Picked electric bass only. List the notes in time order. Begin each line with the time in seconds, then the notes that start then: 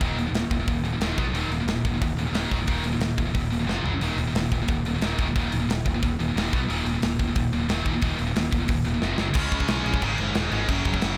0.01 D#1
0.15 D#1
0.31 D#1
0.51 D#1
0.67 D#1
0.82 D#1
1.00 D#1
1.18 B1
1.32 D#1
1.49 D#1
1.66 D#1
1.84 D#1
2.01 D#1
2.15 D#1
2.33 D#1
2.52 D#1
2.68 D#1
2.83 D#1
2.99 D#1
3.18 D#1
3.35 D#1
3.51 D#1
3.66 F1
3.83 F#1
4.00 D#1
4.17 D#1
4.34 D#1
4.52 D#1
4.69 D#1
4.84 D#1
5.01 D#1
5.19 D#1
5.36 D#1
5.53 D#1
5.69 D#1
5.86 D#1
6.03 D#1
6.19 D#1
6.37 D#1
6.53 B1
6.70 D#1
6.85 D#1
7.04 D#1
7.20 D#1
7.36 D#1
7.52 D#1
7.69 D#1
7.85 D#1
8.02 D#1
8.20 D#1
8.36 D#1
8.53 D#1
8.69 D#1
8.86 D#1
9.03 F1
9.18 F#1
9.35 C#2
9.52 C#2
9.68 B1
9.85 A#1
10.02 G#1
10.19 F#1
10.36 D#1
10.51 G#1
10.68 F#1
10.85 F#1
11.03 F#1